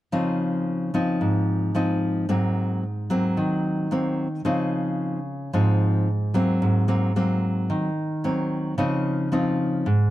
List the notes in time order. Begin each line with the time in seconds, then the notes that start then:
0.12 C#3 F3 C4 D#4
0.94 F3 C4 D#4
1.21 G#2
1.75 F3 C4 D#4
2.29 G#2 F#3 A#3 C4
3.10 F#3 A#3 C4
3.37 D#3
3.91 F#3 A#3 C4
4.45 C#3 F3 C4 D#4
5.53 G#2 F3 C4 D#4
6.34 F#3 A#3 C4
6.62 G#2
6.88 F#3 A#3 C4
7.16 F#3 A#3 C4
7.70 D#3
8.24 F#3 A#3 C4
8.78 C#3 F3 C4 D#4
9.32 F3 C4 D#4
9.86 G#2